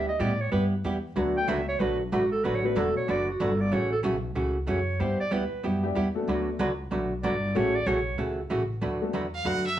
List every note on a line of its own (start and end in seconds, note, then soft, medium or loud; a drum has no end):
0.00 0.19 D2 medium
0.09 0.22 D#5 medium
0.19 0.51 A2 loud
0.19 0.31 G3 medium
0.19 0.32 B3 medium
0.19 0.32 E4 medium
0.19 0.32 G4 medium
0.19 0.42 D5 medium
0.41 0.52 C#5 medium
0.52 0.83 G2 medium
0.52 0.73 G3 medium
0.52 0.73 B3 medium
0.52 0.73 E4 medium
0.52 0.73 G4 medium
0.52 0.65 B4 medium
0.84 1.15 E2 loud
0.84 0.96 G3 medium
0.84 0.96 B3 medium
0.84 0.96 E4 medium
0.84 0.96 G4 medium
1.16 1.47 D2 loud
1.16 1.37 D3 medium
1.16 2.05 F#3 medium
1.16 1.37 F#3 medium
1.16 2.05 A3 medium
1.16 1.37 A3 medium
1.16 2.05 B3 medium
1.16 2.05 D4 medium
1.16 1.37 D4 medium
1.16 2.05 F#4 medium
1.16 1.37 F#4 medium
1.16 1.38 B4 medium
1.37 1.50 G5 loud
1.48 1.79 C#2 loud
1.48 1.59 D3 medium
1.48 1.59 F#3 medium
1.48 1.59 A3 medium
1.48 1.60 D4 loud
1.48 1.60 F#4 medium
1.48 1.60 B4 loud
1.48 1.68 E5 medium
1.69 1.81 C#5 loud
1.80 2.11 B1 medium
1.80 2.01 D3 medium
1.80 2.01 F#3 medium
1.80 2.01 A3 medium
1.80 2.01 D4 medium
1.80 2.01 F#4 medium
1.80 2.00 B4 medium
1.80 2.01 B4 medium
2.00 2.14 D4 soft
2.12 2.43 G#1 loud
2.12 2.24 D3 medium
2.12 2.24 F#3 medium
2.12 2.24 A3 medium
2.12 2.24 D4 medium
2.12 2.31 F#4 medium
2.12 2.24 F#4 medium
2.12 2.24 B4 medium
2.32 2.46 A4 medium
2.44 2.76 A1 medium
2.44 2.65 D3 medium
2.44 2.65 F#3 medium
2.44 2.66 A3 medium
2.44 2.65 D4 medium
2.44 2.66 F#4 medium
2.44 2.57 B4 medium
2.44 2.66 B4 medium
2.55 2.67 C#5 medium
2.63 3.05 F#3 medium
2.63 3.05 A3 medium
2.63 3.05 B3 medium
2.63 3.05 D4 medium
2.63 3.05 F#4 medium
2.63 2.79 B4 medium
2.76 2.95 E1 loud
2.76 2.87 D3 medium
2.76 2.87 F#3 medium
2.76 2.87 A3 medium
2.76 2.88 D4 medium
2.76 2.88 F#4 medium
2.76 2.96 A4 medium
2.76 2.88 B4 medium
2.97 3.12 C#5 loud
2.97 muted upright bass stroke soft
3.08 3.39 F#1 medium
3.08 3.29 D3 medium
3.08 3.29 F#3 medium
3.08 3.29 A3 medium
3.08 3.29 D4 medium
3.08 3.29 F#4 medium
3.08 3.30 B4 medium
3.08 3.29 D5 loud
3.30 3.44 F#4 medium
3.40 3.71 G1 medium
3.40 3.51 D3 medium
3.40 3.51 F#3 medium
3.40 3.51 A3 medium
3.40 3.52 D4 medium
3.40 3.52 F#4 medium
3.40 3.62 A4 medium
3.40 3.52 B4 medium
3.61 3.74 D5 loud
3.71 4.03 A1 medium
3.71 3.93 C#3 medium
3.71 3.93 E3 medium
3.71 3.93 A3 medium
3.71 3.93 C#4 medium
3.71 3.93 F#4 medium
3.71 3.92 C#5 medium
3.92 3.99 A4 medium
4.03 4.35 B1 loud
4.03 4.15 C#3 medium
4.03 4.15 E3 medium
4.03 4.15 A3 medium
4.03 4.15 C#4 medium
4.03 4.15 F#4 medium
4.35 4.67 C#2 medium
4.35 4.56 C#3 soft
4.35 4.57 E3 medium
4.35 4.57 A3 medium
4.35 4.57 C#4 medium
4.35 4.57 F#4 medium
4.67 4.99 F#2 loud
4.67 4.79 C#3 medium
4.67 4.79 E3 medium
4.67 4.79 A3 medium
4.67 4.79 C#4 medium
4.67 4.79 F#4 medium
4.67 5.02 C#5 medium
5.00 5.19 G2 medium
5.00 5.21 G3 medium
5.00 5.21 B3 medium
5.00 5.21 E4 medium
5.00 5.21 G4 medium
5.00 5.20 C5 medium
5.20 5.34 D5 loud
5.20 muted upright bass stroke soft
5.31 5.50 D2 loud
5.31 5.43 G3 medium
5.31 5.43 B3 medium
5.31 5.43 E4 medium
5.31 5.43 G4 medium
5.31 5.64 B4 medium
5.53 muted upright bass stroke soft
5.64 5.95 F#2 medium
5.64 5.84 G3 medium
5.64 5.85 B3 medium
5.64 5.85 E4 medium
5.64 5.85 G4 medium
5.83 5.94 G3 medium
5.83 5.94 B3 medium
5.83 5.94 D4 medium
5.83 5.94 E4 medium
5.83 5.94 G4 medium
5.95 6.26 E2 medium
5.95 6.07 G3 medium
5.95 6.07 B3 medium
5.95 6.07 E4 medium
5.95 6.07 G4 medium
6.15 6.56 A3 medium
6.15 6.57 B3 medium
6.15 6.57 D4 medium
6.15 6.57 F#4 medium
6.15 6.57 A4 medium
6.28 6.58 D2 medium
6.28 6.48 D3 medium
6.28 6.49 F#3 medium
6.28 6.49 A3 medium
6.28 6.49 D4 medium
6.28 6.49 F#4 medium
6.28 6.49 B4 medium
6.59 6.90 C#2 loud
6.59 6.71 D3 medium
6.59 6.71 F#3 loud
6.59 6.71 A3 medium
6.59 6.71 D4 medium
6.59 6.71 F#4 medium
6.59 6.71 B4 medium
6.91 7.22 B1 medium
6.91 7.12 D3 medium
6.91 7.12 F#3 medium
6.91 7.12 A3 medium
6.91 7.12 D4 medium
6.91 7.12 F#4 medium
6.91 7.12 B4 medium
7.23 7.54 G1 loud
7.23 7.34 D3 medium
7.23 7.35 F#3 medium
7.23 7.35 A3 medium
7.23 7.35 D4 medium
7.23 7.35 F#4 medium
7.23 7.35 B4 medium
7.23 7.58 D5 medium
7.55 7.86 A1 medium
7.55 7.76 C#3 medium
7.55 7.76 E3 medium
7.55 7.73 A3 medium
7.55 7.76 A3 medium
7.55 7.73 C#4 medium
7.55 7.76 C#4 medium
7.55 7.73 E4 medium
7.55 7.73 F#4 medium
7.55 7.77 F#4 medium
7.55 7.73 A4 medium
7.55 7.77 C#5 medium
7.75 7.88 D5 loud
7.86 8.17 B1 loud
7.86 7.98 C#3 medium
7.86 7.98 E3 medium
7.86 7.98 A3 medium
7.86 7.98 C#4 medium
7.86 7.98 F#4 loud
7.86 8.19 C#5 medium
8.18 8.50 C#2 medium
8.18 8.39 C#3 medium
8.18 8.39 E3 medium
8.18 8.40 A3 medium
8.18 8.40 C#4 medium
8.18 8.40 F#4 medium
8.50 8.81 A1 loud
8.50 8.62 C#3 medium
8.50 8.62 E3 medium
8.50 8.62 A3 medium
8.50 8.62 C#4 medium
8.50 8.62 F#4 medium
8.82 9.13 D2 medium
8.82 9.03 D3 medium
8.82 9.03 F#3 medium
8.82 9.03 A3 medium
8.82 9.03 D4 medium
8.82 9.03 F#4 medium
8.82 9.03 B4 medium
9.02 9.13 A3 medium
9.02 9.13 B3 medium
9.02 9.13 D4 medium
9.02 9.13 F#4 medium
9.02 9.13 A4 medium
9.13 9.45 E2 medium
9.13 9.25 D3 medium
9.13 9.25 F#3 medium
9.13 9.25 A3 medium
9.13 9.26 D4 medium
9.13 9.26 F#4 medium
9.13 9.26 B4 medium
9.34 9.48 F5 medium
9.45 9.77 F#2 medium
9.45 9.67 D3 medium
9.45 9.67 F#3 medium
9.45 9.67 A3 medium
9.45 9.67 D4 medium
9.45 9.67 F#4 medium
9.45 9.67 B4 medium
9.45 9.66 F#5 loud
9.66 9.79 E5 medium